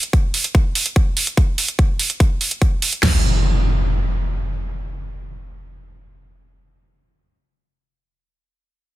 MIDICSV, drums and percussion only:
0, 0, Header, 1, 2, 480
1, 0, Start_track
1, 0, Tempo, 413793
1, 1594, Time_signature, 4, 2, 24, 8
1, 10384, End_track
2, 0, Start_track
2, 0, Title_t, "Drums"
2, 34, Note_on_c, 9, 42, 65
2, 150, Note_off_c, 9, 42, 0
2, 154, Note_on_c, 9, 36, 114
2, 154, Note_on_c, 9, 42, 67
2, 270, Note_off_c, 9, 36, 0
2, 270, Note_off_c, 9, 42, 0
2, 394, Note_on_c, 9, 46, 99
2, 510, Note_off_c, 9, 46, 0
2, 514, Note_on_c, 9, 42, 67
2, 630, Note_off_c, 9, 42, 0
2, 634, Note_on_c, 9, 36, 113
2, 634, Note_on_c, 9, 42, 69
2, 750, Note_off_c, 9, 36, 0
2, 750, Note_off_c, 9, 42, 0
2, 874, Note_on_c, 9, 46, 97
2, 990, Note_off_c, 9, 46, 0
2, 994, Note_on_c, 9, 42, 67
2, 1110, Note_off_c, 9, 42, 0
2, 1114, Note_on_c, 9, 36, 115
2, 1114, Note_on_c, 9, 42, 69
2, 1230, Note_off_c, 9, 36, 0
2, 1230, Note_off_c, 9, 42, 0
2, 1354, Note_on_c, 9, 46, 103
2, 1470, Note_off_c, 9, 46, 0
2, 1474, Note_on_c, 9, 42, 66
2, 1590, Note_off_c, 9, 42, 0
2, 1594, Note_on_c, 9, 36, 109
2, 1594, Note_on_c, 9, 42, 70
2, 1710, Note_off_c, 9, 36, 0
2, 1710, Note_off_c, 9, 42, 0
2, 1834, Note_on_c, 9, 46, 98
2, 1950, Note_off_c, 9, 46, 0
2, 1954, Note_on_c, 9, 42, 67
2, 2070, Note_off_c, 9, 42, 0
2, 2074, Note_on_c, 9, 36, 114
2, 2074, Note_on_c, 9, 42, 67
2, 2190, Note_off_c, 9, 36, 0
2, 2190, Note_off_c, 9, 42, 0
2, 2314, Note_on_c, 9, 46, 104
2, 2430, Note_off_c, 9, 46, 0
2, 2434, Note_on_c, 9, 42, 66
2, 2550, Note_off_c, 9, 42, 0
2, 2554, Note_on_c, 9, 36, 112
2, 2554, Note_on_c, 9, 42, 69
2, 2670, Note_off_c, 9, 36, 0
2, 2670, Note_off_c, 9, 42, 0
2, 2794, Note_on_c, 9, 46, 97
2, 2910, Note_off_c, 9, 46, 0
2, 2914, Note_on_c, 9, 42, 68
2, 3030, Note_off_c, 9, 42, 0
2, 3034, Note_on_c, 9, 36, 111
2, 3034, Note_on_c, 9, 42, 70
2, 3150, Note_off_c, 9, 36, 0
2, 3150, Note_off_c, 9, 42, 0
2, 3274, Note_on_c, 9, 46, 99
2, 3390, Note_off_c, 9, 46, 0
2, 3394, Note_on_c, 9, 42, 67
2, 3510, Note_off_c, 9, 42, 0
2, 3514, Note_on_c, 9, 38, 102
2, 3514, Note_on_c, 9, 43, 104
2, 3514, Note_on_c, 9, 49, 89
2, 3630, Note_off_c, 9, 38, 0
2, 3630, Note_off_c, 9, 43, 0
2, 3630, Note_off_c, 9, 49, 0
2, 10384, End_track
0, 0, End_of_file